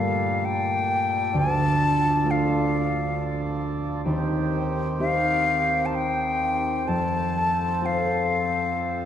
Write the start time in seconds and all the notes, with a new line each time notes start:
Already playing: G2 A#2 G3 A3 A#3 G4 A4 F5
0.45 G5
1.32 D2 F3 D4
1.37 A5
2.25 A3 D4 F4
2.31 F5
4.03 D#2 D#3 C4 G4
4.99 C4 D#4 G4 F5
5.86 A5
5.95 G5
6.85 F2 F3 A4 A5
7.81 C4 F4 A4
7.86 F5